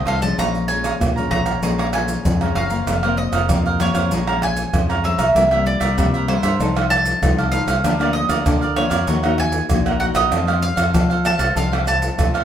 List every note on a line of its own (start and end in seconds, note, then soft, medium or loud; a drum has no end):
0.00 0.36 C3 medium
0.00 0.18 D#3 medium
0.00 0.19 A3 medium
0.00 0.19 C4 medium
0.05 0.33 C2 medium
0.05 0.21 F4 medium
0.05 0.21 A4 medium
0.05 0.21 C5 medium
0.05 0.20 D#5 medium
0.05 0.22 F5 medium
0.05 pandeiro medium
0.05 tamborim medium
0.21 0.64 F3 medium
0.21 0.65 G#3 medium
0.21 0.65 C#4 medium
0.21 0.37 A4 soft
0.21 0.37 C5 soft
0.21 0.36 D#5 soft
0.21 0.37 A5 medium
0.21 pandeiro medium
0.21 maracas medium
0.38 0.91 A#1 medium
0.38 0.98 A#2 medium
0.38 0.68 G#4 medium
0.38 0.69 C#5 medium
0.38 0.69 F5 medium
0.38 0.68 A#5 medium
0.38 0.69 A#5 medium
0.38 pandeiro medium
0.38 tamborim medium
0.38 maracas medium
0.38 surdo medium
0.55 pandeiro soft
0.55 maracas soft
0.68 1.12 F3 medium
0.68 1.12 G#3 medium
0.68 1.12 C#4 medium
0.68 0.83 G#4 soft
0.68 0.84 C#5 soft
0.68 0.84 F5 soft
0.68 1.30 G#5 medium
0.68 0.85 A#5 medium
0.68 pandeiro medium
0.68 maracas medium
0.84 0.94 G#4 medium
0.84 0.94 C#5 medium
0.84 0.94 F5 medium
0.84 0.94 A#5 medium
0.84 pandeiro medium
0.84 tamborim medium
0.84 maracas medium
1.00 1.60 F2 soft
1.00 1.27 A#2 medium
1.00 pandeiro medium
1.00 tamborim medium
1.00 maracas medium
1.00 surdo medium
1.16 1.59 F3 medium
1.16 1.59 G#3 medium
1.16 1.59 C#4 medium
1.16 1.30 C#5 soft
1.16 1.31 F5 soft
1.16 1.30 A#5 soft
1.16 pandeiro soft
1.16 maracas soft
1.31 1.58 A#1 medium
1.31 1.46 G#4 medium
1.31 1.46 C#5 medium
1.31 1.45 F5 medium
1.31 1.93 A#5 medium
1.31 1.45 A#5 medium
1.31 pandeiro medium
1.31 tamborim medium
1.31 surdo medium
1.46 1.62 C#5 soft
1.46 1.61 F5 soft
1.46 1.61 A#5 soft
1.46 pandeiro medium
1.46 tamborim medium
1.46 maracas medium
1.62 2.16 A#1 medium
1.62 2.23 A#2 medium
1.62 1.90 F3 medium
1.62 1.90 G#3 medium
1.62 1.90 C#4 medium
1.62 1.77 G#4 medium
1.62 1.77 C#5 medium
1.62 1.78 F5 medium
1.62 1.78 A#5 medium
1.62 pandeiro medium
1.62 maracas medium
1.62 surdo medium
1.78 1.87 G#4 medium
1.78 1.88 C#5 medium
1.78 1.88 F5 medium
1.78 1.88 A#5 medium
1.78 pandeiro soft
1.78 tamborim medium
1.78 maracas soft
1.93 2.23 F3 medium
1.93 2.23 G#3 soft
1.93 2.24 C#4 medium
1.93 2.39 G#4 soft
1.93 2.40 C#5 soft
1.93 2.40 F5 medium
1.93 2.55 G#5 medium
1.93 2.40 A#5 medium
1.93 pandeiro medium
1.93 tamborim medium
1.93 maracas medium
2.08 pandeiro medium
2.08 maracas medium
2.25 2.51 F2 medium
2.25 2.84 F2 medium
2.25 pandeiro medium
2.25 maracas medium
2.25 surdo medium
2.41 2.67 F3 medium
2.41 2.67 G#3 medium
2.41 2.67 C#4 medium
2.41 2.56 C#5 soft
2.41 2.56 F5 soft
2.41 2.55 A#5 soft
2.41 pandeiro soft
2.41 tamborim medium
2.41 maracas soft
2.55 2.82 F#1 medium
2.55 2.70 G#4 medium
2.55 2.71 C#5 medium
2.55 3.14 F5 medium
2.55 2.70 F5 medium
2.55 2.69 A#5 medium
2.55 pandeiro medium
2.55 tamborim medium
2.70 3.02 F3 medium
2.70 3.02 A#3 medium
2.70 3.03 C4 medium
2.70 2.86 C#5 soft
2.70 2.86 F5 soft
2.70 2.85 A#5 soft
2.70 pandeiro medium
2.70 maracas medium
2.87 3.27 F1 loud
2.87 3.46 F2 medium
2.87 3.01 F4 soft
2.87 3.02 A#4 soft
2.87 3.02 C5 medium
2.87 3.01 F5 medium
2.87 pandeiro medium
2.87 tamborim medium
2.87 maracas medium
2.87 surdo medium
3.03 3.45 F3 medium
3.03 3.45 A#3 medium
3.03 3.45 C4 medium
3.03 3.17 A#4 medium
3.03 3.17 C5 medium
3.03 3.17 F5 medium
3.03 pandeiro soft
3.03 tamborim medium
3.03 maracas soft
3.17 3.81 D#5 medium
3.17 muted cavaquinho stroke soft
3.17 pandeiro medium
3.32 3.46 F1 medium
3.32 3.49 A#4 medium
3.32 3.48 C5 medium
3.32 3.48 F5 medium
3.32 pandeiro medium
3.32 tamborim medium
3.32 maracas medium
3.32 surdo soft
3.49 3.89 F2 medium
3.49 4.08 C3 medium
3.49 3.75 F3 medium
3.49 3.76 A#3 soft
3.49 3.76 C4 medium
3.49 3.64 F4 soft
3.49 3.64 A#4 medium
3.49 3.65 C5 soft
3.49 3.65 F5 soft
3.49 pandeiro medium
3.49 tamborim medium
3.49 maracas medium
3.49 surdo medium
3.66 3.96 A#4 medium
3.66 3.95 C5 medium
3.66 3.94 F5 medium
3.66 pandeiro soft
3.66 maracas soft
3.80 4.09 F3 medium
3.80 4.09 A#3 medium
3.80 4.09 C4 medium
3.80 4.39 C#5 medium
3.80 pandeiro medium
3.80 tamborim medium
3.80 maracas medium
3.94 4.08 F2 medium
3.94 4.11 A#4 medium
3.94 4.10 C5 medium
3.94 4.10 F5 medium
3.94 pandeiro medium
3.94 tamborim medium
3.94 maracas medium
3.94 surdo soft
4.11 4.64 A#1 medium
4.11 4.71 A#2 medium
4.11 4.21 F3 medium
4.11 4.22 G#3 medium
4.11 4.22 C#4 medium
4.11 4.26 G#4 soft
4.11 4.27 C#5 soft
4.11 4.27 F5 soft
4.11 4.26 A#5 soft
4.11 pandeiro medium
4.11 maracas medium
4.11 surdo medium
4.27 4.69 F3 medium
4.27 4.69 G#3 medium
4.27 4.70 C#4 medium
4.27 4.41 C#5 medium
4.27 4.42 F5 medium
4.27 4.42 A#5 medium
4.27 pandeiro soft
4.27 tamborim medium
4.27 maracas soft
4.42 5.07 G#5 medium
4.42 muted cavaquinho stroke soft
4.42 pandeiro medium
4.42 tamborim medium
4.42 surdo soft
4.57 pandeiro medium
4.57 maracas medium
4.73 5.13 F2 medium
4.73 5.33 F2 medium
4.73 5.00 F3 medium
4.73 5.00 G#3 medium
4.73 5.01 C#4 medium
4.73 pandeiro medium
4.73 tamborim medium
4.73 maracas medium
4.73 surdo loud
4.89 5.03 C#5 medium
4.89 5.04 F5 medium
4.89 5.04 A#5 medium
4.89 pandeiro soft
4.89 tamborim medium
4.89 maracas soft
5.03 5.25 F3 medium
5.03 5.25 G#3 medium
5.03 5.25 C#4 medium
5.03 5.18 G#4 soft
5.03 5.19 C#5 medium
5.03 5.66 E5 medium
5.03 5.18 F5 medium
5.03 5.17 A#5 medium
5.03 pandeiro medium
5.18 5.32 B1 medium
5.18 5.34 C#5 medium
5.18 5.34 F5 medium
5.18 5.34 A#5 medium
5.18 pandeiro medium
5.18 tamborim medium
5.18 maracas medium
5.18 surdo soft
5.35 5.75 C2 loud
5.35 5.95 C3 medium
5.35 5.45 G3 medium
5.35 5.45 A#3 medium
5.35 5.50 E4 soft
5.35 5.46 E4 medium
5.35 5.50 A#4 medium
5.35 5.50 C5 medium
5.35 5.51 E5 medium
5.35 pandeiro medium
5.35 tamborim medium
5.35 maracas medium
5.35 surdo medium
5.51 5.93 G3 medium
5.51 5.94 A#3 medium
5.51 5.94 E4 medium
5.51 5.65 A#4 medium
5.51 5.65 C5 medium
5.51 5.66 E5 medium
5.51 pandeiro soft
5.51 tamborim medium
5.51 maracas soft
5.65 6.25 D5 medium
5.65 muted cavaquinho stroke soft
5.65 pandeiro medium
5.80 5.95 C2 medium
5.80 5.96 A#4 medium
5.80 5.96 C5 medium
5.80 5.95 E5 medium
5.80 pandeiro medium
5.80 tamborim medium
5.80 maracas medium
5.80 surdo soft
5.97 6.57 G2 medium
5.97 6.37 C3 loud
5.97 6.24 G3 soft
5.97 6.24 A#3 medium
5.97 6.12 E4 soft
5.97 6.24 E4 medium
5.97 6.12 A#4 soft
5.97 6.13 C5 soft
5.97 6.12 E5 soft
5.97 pandeiro medium
5.97 tamborim medium
5.97 maracas medium
5.97 surdo loud
6.14 6.44 A#4 medium
6.14 6.43 C5 medium
6.14 6.42 E5 medium
6.14 pandeiro soft
6.14 maracas soft
6.28 6.49 G3 medium
6.28 6.49 A#3 medium
6.28 6.49 E4 medium
6.28 6.87 C5 medium
6.28 pandeiro medium
6.28 tamborim medium
6.43 6.57 G2 medium
6.43 6.59 A#4 medium
6.43 6.59 C5 medium
6.43 6.58 E5 medium
6.43 pandeiro medium
6.43 tamborim medium
6.43 maracas medium
6.43 surdo soft
6.59 7.12 C2 medium
6.59 7.19 C3 medium
6.59 6.71 F3 medium
6.59 6.71 A3 medium
6.59 6.75 D#4 medium
6.59 6.71 D#4 medium
6.59 6.75 A4 medium
6.59 6.75 C5 medium
6.59 6.75 F5 medium
6.59 pandeiro medium
6.59 maracas medium
6.59 surdo medium
6.75 7.17 F3 medium
6.75 7.17 A3 medium
6.75 7.17 D#4 medium
6.75 6.90 A4 medium
6.75 6.91 C5 medium
6.75 6.90 F5 medium
6.75 pandeiro soft
6.75 tamborim medium
6.75 maracas soft
6.90 7.49 A5 loud
6.90 muted cavaquinho stroke soft
6.90 pandeiro medium
6.90 tamborim medium
6.90 maracas medium
6.90 surdo soft
7.06 pandeiro medium
7.06 maracas medium
7.22 7.62 C2 medium
7.22 7.81 C3 medium
7.22 7.48 F3 medium
7.22 7.49 A3 medium
7.22 7.49 D#4 medium
7.22 pandeiro medium
7.22 tamborim medium
7.22 maracas medium
7.22 surdo loud
7.38 7.52 A4 medium
7.38 7.53 C5 medium
7.38 7.52 F5 medium
7.38 pandeiro soft
7.38 tamborim medium
7.38 maracas soft
7.52 7.73 F3 medium
7.52 7.73 A3 medium
7.52 7.67 D#4 medium
7.52 7.73 D#4 medium
7.52 7.68 A4 medium
7.52 7.68 C5 medium
7.52 8.16 F5 medium
7.52 7.67 F5 medium
7.52 pandeiro medium
7.52 maracas medium
7.67 7.81 C2 medium
7.67 7.84 A4 medium
7.67 7.83 C5 medium
7.67 7.83 F5 medium
7.67 pandeiro medium
7.67 tamborim medium
7.67 maracas medium
7.67 surdo soft
7.83 8.24 D2 loud
7.83 8.43 D3 medium
7.83 7.93 F3 medium
7.83 7.94 A#3 medium
7.83 7.99 D4 soft
7.83 7.94 D4 medium
7.83 7.99 A#4 soft
7.83 8.00 D5 medium
7.83 7.99 F5 medium
7.83 pandeiro medium
7.83 tamborim medium
7.83 maracas medium
7.83 surdo medium
7.99 8.41 F3 medium
7.99 8.41 A#3 medium
7.99 8.41 D4 medium
7.99 8.14 A#4 medium
7.99 8.15 D5 medium
7.99 8.14 F5 medium
7.99 pandeiro soft
7.99 tamborim medium
7.99 maracas soft
8.13 8.76 D#5 medium
8.13 muted cavaquinho stroke soft
8.13 pandeiro medium
8.29 8.43 D2 medium
8.29 8.45 A#4 medium
8.29 8.44 D5 medium
8.29 8.44 F5 medium
8.29 pandeiro medium
8.29 tamborim medium
8.29 maracas medium
8.29 surdo soft
8.45 9.05 D3 medium
8.45 8.86 D3 loud
8.45 8.64 F3 medium
8.45 8.64 A#3 medium
8.45 8.60 D4 soft
8.45 8.65 D4 medium
8.45 8.60 A#4 soft
8.45 8.61 D5 soft
8.45 8.60 F5 medium
8.45 pandeiro medium
8.45 tamborim medium
8.45 maracas medium
8.45 surdo loud
8.61 8.91 A#4 medium
8.61 8.89 D5 medium
8.61 8.88 F5 medium
8.61 pandeiro soft
8.61 maracas soft
8.76 8.97 F3 medium
8.76 8.97 A#3 medium
8.76 8.97 D4 medium
8.76 9.35 C#5 medium
8.76 pandeiro medium
8.76 tamborim medium
8.90 9.05 F2 medium
8.90 9.06 A#4 medium
8.90 9.06 D5 medium
8.90 9.05 F5 medium
8.90 pandeiro medium
8.90 tamborim medium
8.90 maracas medium
8.90 surdo soft
9.07 9.61 D#2 medium
9.07 9.67 D#3 medium
9.07 9.19 A#3 medium
9.07 9.19 D#4 medium
9.07 9.22 F#4 soft
9.07 9.19 F#4 medium
9.07 9.22 A#4 medium
9.07 9.22 D#5 medium
9.07 9.22 F#5 medium
9.07 pandeiro medium
9.07 maracas medium
9.07 surdo medium
9.23 9.66 A#3 medium
9.23 9.66 D#4 medium
9.23 9.66 F#4 medium
9.23 9.37 A#4 medium
9.23 9.38 D#5 medium
9.23 9.38 F#5 medium
9.23 pandeiro soft
9.23 tamborim medium
9.23 maracas soft
9.38 9.99 G#5 loud
9.38 muted cavaquinho stroke soft
9.38 pandeiro medium
9.38 tamborim medium
9.38 surdo soft
9.52 pandeiro medium
9.52 maracas medium
9.70 10.10 A#1 medium
9.70 10.30 A#2 medium
9.70 9.97 A#3 medium
9.70 9.97 D#4 medium
9.70 9.97 F#4 medium
9.70 pandeiro medium
9.70 tamborim medium
9.70 maracas medium
9.70 surdo medium
9.86 10.00 A#4 soft
9.86 10.00 D#5 medium
9.86 10.00 F#5 medium
9.86 pandeiro soft
9.86 tamborim medium
9.86 maracas soft
10.00 10.29 A#3 medium
10.00 10.30 D#4 medium
10.00 10.15 F#4 soft
10.00 10.30 F#4 medium
10.00 10.15 A#4 medium
10.00 10.15 D#5 medium
10.00 10.05 F#5 medium
10.00 10.14 F#5 medium
10.00 pandeiro medium
10.14 10.29 A#1 medium
10.14 10.31 A#4 medium
10.14 10.64 D#5 medium
10.14 10.31 D#5 medium
10.14 10.30 F#5 medium
10.14 pandeiro medium
10.14 tamborim medium
10.14 maracas medium
10.14 surdo soft
10.31 10.72 F2 loud
10.31 10.91 F3 medium
10.31 10.43 A3 medium
10.31 10.43 C4 medium
10.31 10.46 F4 medium
10.31 10.44 F4 medium
10.31 10.47 A4 soft
10.31 10.47 C5 medium
10.31 10.46 F5 medium
10.31 pandeiro medium
10.31 tamborim medium
10.31 maracas medium
10.31 surdo medium
10.47 10.90 A3 medium
10.47 10.90 C4 medium
10.47 10.91 F4 medium
10.47 10.61 A4 medium
10.47 10.62 C5 medium
10.47 10.62 F5 medium
10.47 pandeiro soft
10.47 tamborim medium
10.47 maracas soft
10.62 11.26 F5 medium
10.62 muted cavaquinho stroke soft
10.62 pandeiro medium
10.62 maracas medium
10.76 10.91 F2 medium
10.76 10.93 A4 medium
10.76 10.92 C5 medium
10.76 10.92 F5 medium
10.76 pandeiro medium
10.76 tamborim medium
10.76 maracas medium
10.76 surdo soft
10.93 11.54 C3 medium
10.93 11.34 F3 loud
10.93 11.13 A3 medium
10.93 11.13 C4 medium
10.93 11.08 F4 soft
10.93 11.13 F4 medium
10.93 11.08 A4 soft
10.93 11.09 C5 soft
10.93 11.09 F5 medium
10.93 pandeiro medium
10.93 tamborim medium
10.93 maracas medium
10.93 surdo loud
11.10 11.39 A4 medium
11.10 11.38 C5 medium
11.10 11.37 F5 medium
11.10 pandeiro soft
11.10 maracas soft
11.25 11.54 A3 medium
11.25 11.54 C4 medium
11.25 11.55 F4 medium
11.25 11.55 A5 loud
11.25 pandeiro medium
11.25 tamborim medium
11.25 maracas medium
11.38 11.53 C2 medium
11.38 11.55 A4 medium
11.38 11.54 C5 medium
11.38 11.54 F5 medium
11.38 pandeiro medium
11.38 tamborim medium
11.38 maracas medium
11.38 surdo soft
11.55 12.09 C2 medium
11.55 12.15 F3 medium
11.55 11.70 F4 soft
11.55 11.71 A4 medium
11.55 11.71 C5 soft
11.55 11.87 F5 medium
11.55 11.70 F5 medium
11.55 pandeiro medium
11.55 maracas medium
11.55 surdo medium
11.72 12.14 A3 medium
11.72 12.14 C4 medium
11.72 12.14 F4 medium
11.72 11.85 A4 medium
11.72 11.85 C5 medium
11.72 11.86 F5 medium
11.72 pandeiro soft
11.72 tamborim medium
11.72 maracas soft
11.85 12.44 A5 loud
11.85 muted cavaquinho stroke soft
11.85 pandeiro medium
11.85 tamborim medium
11.85 maracas medium
11.85 surdo soft
12.02 pandeiro medium
12.02 maracas medium
12.18 12.44 A2 medium
12.18 12.44 C3 medium
12.18 12.44 A3 medium
12.18 12.44 C4 medium
12.18 12.44 F4 medium
12.18 pandeiro medium
12.18 tamborim medium
12.18 maracas medium
12.18 surdo loud
12.34 12.44 A4 medium
12.34 12.44 C5 medium
12.34 12.44 F5 medium
12.34 pandeiro soft
12.34 tamborim medium
12.34 maracas soft